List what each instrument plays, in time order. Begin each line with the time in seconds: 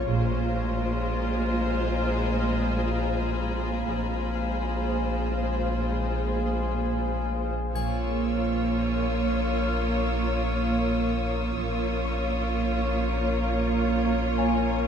0.07 double bass section A#1, sub bass A#1, cello section A#2, viola section G#3 F4, ambient pad G#4 C5 F5, violin section C5 G#5 A#5
1.99 violin section B5
3.86 double bass section A#1, sub bass A#1, cello section A#2, viola section G#3 F4, ambient pad G#4 C5 F5, violin section C5
4.34 harp F5 F6
7.73 double bass section A#1, sub bass A#1, cello section A#2, viola section A#3 F4, ambient pad A#4 C#5 F5, violin section C#5 C#6 E6, harp G#5 G#6, triangle
8.71 violin section D#6
9.67 harp F6
11.56 double bass section A#1, sub bass A#1, cello section A#2, viola section A#3 F4, ambient pad A#4 C#5 F5, violin section C#5
12.05 harp C#6
14.38 harp G#5